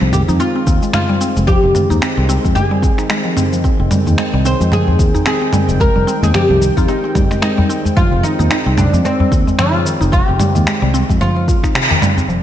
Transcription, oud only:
0.13 G4
0.40 F4
0.94 F4
1.47 G4
2.55 G#4
4.46 C5
4.73 G#4
5.27 G#4
5.81 A#4
6.23 G#4
6.35 G4
6.77 F4
6.88 D#4
7.42 D#4
7.97 F4
8.23 D#4
8.51 D#4
8.77 D4
9.05 C4
9.59 F4
10.13 G4
11.21 F4

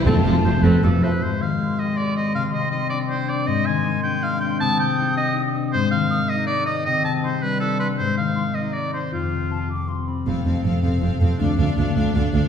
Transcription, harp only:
Already playing: F3 C4 A4
0.02 F5
1.21 G#2
1.41 D#3
1.59 G#4
1.78 G4
1.97 G#4
2.16 C4
2.35 C3
2.53 G3
2.72 D#4
2.92 D4
3.11 D#4
3.29 C4
3.47 G#2
3.67 D#3
3.86 D#4
4.05 D4
4.24 D#4
4.43 C4
4.62 C3
4.80 G3
4.99 D#4
5.17 D4
5.36 D#4
5.55 C4
5.74 G#2
5.93 D#3
6.12 D#4
6.30 D5
6.49 D#4
6.68 C4
6.86 C3
7.06 G3
7.24 D#4
7.44 D4
7.62 D#4
7.80 C4
8.00 G#2
8.18 D#3
8.37 D#4
8.55 D5
8.75 D#4
8.94 C4
9.12 F2
9.31 C3
9.51 F4
9.70 E4
9.89 F4
10.08 C4
10.26 F2
10.46 C4
10.64 A4
10.84 C5
11.02 F5
11.21 C5
11.40 D3
11.59 D4
11.78 A4
11.96 D5
12.16 F5
12.34 D5

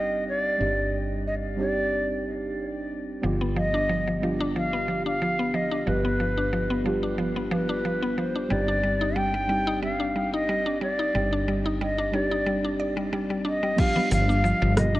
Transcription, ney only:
Already playing: D#5
0.28 D5
1.27 D#5
1.59 D5
3.56 D#5
4.56 F5
5.07 F5
5.54 D#5
5.87 B4
7.52 B4
8.18 C5
8.51 D5
9.17 G5
9.84 F5
10.34 D#5
10.82 D5
11.81 D#5
12.14 D5
13.47 D#5
13.79 F5
14.13 F5
14.77 D#5

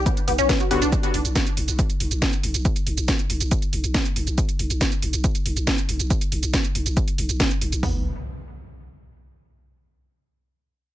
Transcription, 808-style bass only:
0.28 B1
0.39 B1
0.71 B1
0.82 B1
1.14 B1
1.25 B1
1.57 B1
1.68 B1
2.00 B1
2.11 B1
2.44 B1
2.54 B1
2.87 B1
2.98 B1
3.30 B1
3.41 B1
3.73 B1
3.84 B1
4.16 B1
4.27 B1
4.59 B1
4.70 B1
5.02 B1
5.13 B1
5.46 B1
5.57 B1
5.89 B1
6.00 B1
6.32 B1
6.43 B1
6.75 B1
6.86 B1
7.18 B1
7.29 B1
7.61 B1
7.72 B1

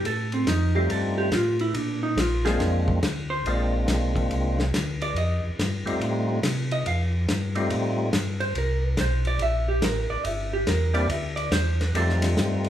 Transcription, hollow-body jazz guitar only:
0.06 A4
0.34 C4
0.48 D#4
0.75 G4
0.91 A4
1.18 G4
1.34 F4
1.61 E4
1.76 D4
2.03 D#4
2.19 F4
2.45 G#4
3.30 C5
3.48 D5
5.02 D5
5.18 D#5
6.72 D#5
6.87 F5
8.40 C5
8.58 A#4
8.85 B4
9.01 C5
9.27 D5
9.42 E5
9.68 G4
9.85 A#4
10.10 D5
10.26 E5
10.53 G4
10.68 A#4
10.94 D5
11.11 E5
11.36 D5
11.52 C5
11.80 B4
11.96 A4

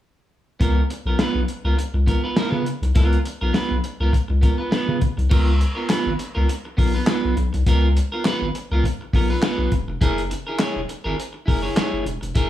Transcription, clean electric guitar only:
0.60 B3 F4 A#4
0.90 muted clean electric guitar stroke
1.07 B3 F4 A#4
1.20 B3 F4 B4
1.49 muted clean electric guitar stroke
1.65 B3 F4 A#4
1.77 muted clean electric guitar stroke
1.94 muted clean electric guitar stroke
2.06 B3 F4 A#4
2.24 B3 F4 B4
2.37 A#3 E4 A#4
2.49 B3 F4 B4
2.66 muted clean electric guitar stroke
2.83 muted clean electric guitar stroke
2.95 B3 F4 A#4
3.26 muted clean electric guitar stroke
3.41 B3 F4 A#4
3.53 B3 F4 B4
3.84 muted clean electric guitar stroke
4.01 B3 F4 A#4
4.13 muted clean electric guitar stroke
4.28 muted clean electric guitar stroke
4.41 B3 F4 A#4
4.58 B3 F4 B4
4.71 B3 F4 B4
5.01 muted clean electric guitar stroke
5.17 muted clean electric guitar stroke
5.30 B3 F4 A#4
5.59 muted clean electric guitar stroke
5.75 B3 F4 A#4
5.89 B3 F4 B4
6.19 muted clean electric guitar stroke
6.35 B3 F4 A#4
6.49 muted clean electric guitar stroke
6.65 muted clean electric guitar stroke
6.77 B3 F4 A#4
6.94 B3 F4 B4
7.07 B3 F4 B4
7.36 muted clean electric guitar stroke
7.53 muted clean electric guitar stroke
7.67 B3 F4 A#4
7.96 muted clean electric guitar stroke
8.12 B3 F4 A#4
8.25 B3 F4 B4
8.55 muted clean electric guitar stroke
8.72 B3 F4 A#4
8.85 muted clean electric guitar stroke
9.01 muted clean electric guitar stroke
9.13 B3 F4 A#4
9.30 B3 F4 B4
9.42 B3 F4 B4
9.72 muted clean electric guitar stroke
9.88 muted clean electric guitar stroke
10.01 E4 G#4 A#4
10.30 muted clean electric guitar stroke
10.47 E4 G#4 A#4
10.59 E4 G#4 C#5
10.89 muted clean electric guitar stroke
11.04 E4 G#4 A#4
11.16 muted clean electric guitar stroke
11.33 muted clean electric guitar stroke
11.46 E4 G#4 A#4
11.63 E4 G#4 C#5
11.76 E4 G#4 C#5
12.06 muted clean electric guitar stroke
12.21 muted clean electric guitar stroke
12.35 E4 G#4 A#4

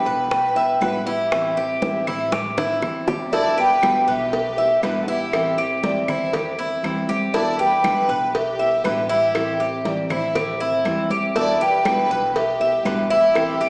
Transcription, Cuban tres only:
0.06 B4
0.56 E5
0.81 B4
1.07 E4
1.57 G4
2.07 E4
2.33 G4
2.58 E4
3.08 G4
3.33 E4
3.58 G4
4.08 B4
4.58 E5
4.83 B4
5.08 E4
5.58 G4
6.08 E4
6.34 G4
6.59 E4
7.09 G4
7.34 E4
7.59 G4
8.09 B4
8.59 E5
8.84 B4
9.09 E4
9.60 G4
10.10 E4
10.35 G4
10.60 E4
11.11 G4
11.36 E4
11.61 G4
12.11 B4
12.61 E5
12.85 B4
13.10 E4
13.61 G4

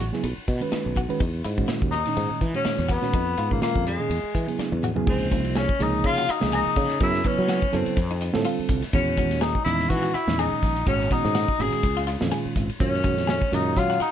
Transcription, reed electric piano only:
0.12 C#3 F#3 B3 E4 G#4
0.60 D#3 G#3 C#4 F#4 B4
1.08 D#3 G#3 C#4 F#4 B4
1.57 A#2 D#3 G#3 C#4 F#4
2.06 A#2 D#3 G#3 C#4 D#4
2.53 A#2 D#3 G#3 C#4 F#4
3.01 A#2 D#3 G#3 C#4 F#4
3.50 A#2 D#3 G#3 C#4 F4
3.98 A#2 D#3 G#3 C#4 G#4
4.47 C#3 F#3 B3 E4 G#4
4.95 C#3 F#3 B3 E4 G#4
5.06 C3 F3 A#3 D#4 G#4
5.31 C3 F3 A#3 D#4 F4
5.79 C3 F3 A#3 D#4 G#4
6.40 C3 F3 A#3 D#4 G#4
7.00 C#3 F#3 B3 E4 G#4
7.24 C#3 F#3 B3 E4 B4
7.71 C#3 F#3 B3 E4 A4
8.32 D3 G3 C4 F4 A4
8.94 A#2 D#3 G#3 C#4 F#4
9.18 A#2 D#3 G#3 C#4 F#4
9.65 A#2 D#3 G#3 C#4 D#4
10.27 A#2 D#3 G#3 C#4 D#4
10.86 A#2 D#3 G#3 C#4 F#4
11.10 A#2 D#3 G#3 C#4 F#4
11.58 A#2 D#3 G#3 C#4 F#4
12.20 A#2 D#3 G#3 C#4 F4
12.79 A#2 D#3 G#3 C#4 F4
13.04 A#2 D#3 G#3 C#4 F#4
13.52 A#2 D#3 G#3 C#4 F4

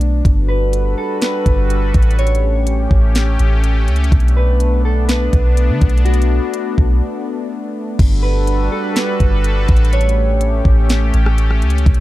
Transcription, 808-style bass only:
Already playing: B1
0.25 G1
1.46 G1
1.95 A1
2.91 A1
3.39 A1
3.88 C#2
4.12 B1
5.33 B1
5.69 D3
5.82 B1
6.78 B1
7.99 G1
9.20 G1
9.69 A1
10.65 A1
11.14 A1
11.62 C#2
11.86 B1

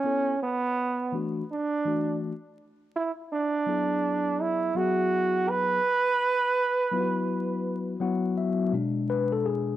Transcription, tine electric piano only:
0.04 B3 E4 A4 C#5
1.12 E3 A3 D4 F#4
1.85 E3 A3 D4 F#4
3.66 F#3 B3 E4 G#4
4.75 F#3 B3 E4 G#4
6.91 F#3 B3 E4 F4
7.00 F#4
8.00 F#3 B3 E4 F#4 F#5
8.37 E5
8.72 B2 G#3 D4
9.10 B4
9.32 A4
9.46 G#4

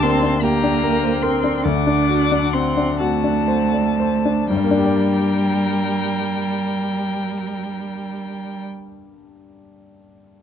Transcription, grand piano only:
Already playing: D2 D4 G4
0.03 A#3
0.23 D4
0.44 G4
0.64 D4
0.84 A#4
1.04 C5
1.23 A#4
1.44 D4
1.65 D2
1.87 D4
2.09 F#4
2.32 D4
2.54 C4
2.77 D4
3.00 F#4
3.24 D4
3.48 C5
3.73 D5
4.00 C5
4.25 D4
4.50 G2
4.57 G3
4.64 A#3
4.71 D4
4.78 G4
4.85 D5

